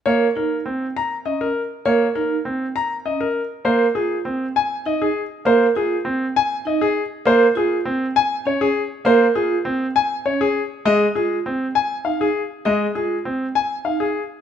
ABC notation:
X:1
M:3/4
L:1/16
Q:1/4=100
K:Fphr
V:1 name="Grand piano"
d z B z3 b z e B z2 | d z B z3 b z e B z2 | c z A z3 a z e A z2 | c z A z3 a z e A z2 |
c z A z3 a z d A z2 | c z A z3 a z d A z2 | e z A z3 a z f A z2 | e z A z3 a z f A z2 |]
V:2 name="Vibraphone"
B z E z4 z D z3 | B z E z4 z D z3 | B z F z4 z E z3 | B z F z4 z E z3 |
B z F z4 z D z3 | B z F z4 z D z3 | A z F z4 z E z3 | A z F z4 z E z3 |]
V:3 name="Grand piano"
B, z3 C z6 z | B, z3 C z6 z | B, z3 C z6 z | B, z3 C z6 z |
B, z3 C z6 z | B, z3 C z6 z | A, z3 C z6 z | A, z3 C z6 z |]